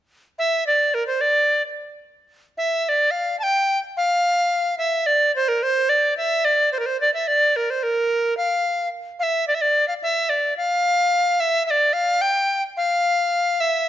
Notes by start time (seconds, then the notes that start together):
0.39 E5
0.67 D5
0.94 A#4
1.07 C5
1.21 D5
2.58 E5
2.85 E5
2.89 D5
3.11 F5
3.39 G5 A5
3.97 F5
4.78 E5
5.06 D5
5.36 C5
5.48 A#4
5.63 C5
5.89 D5
6.17 E5
6.45 D5
6.73 C5
6.79 A#4
6.86 C5
7.01 D5
7.14 E5
7.28 D5
7.56 A#4
7.70 C5
7.83 A#4
8.37 F5
9.20 E5 F5
9.48 D5
9.55 E5
9.61 D5
9.88 F5
10.03 E5
10.29 D5
10.57 F5
11.40 E5
11.66 E5
11.71 D5
11.93 F5
12.21 G5
12.77 F5
13.60 E5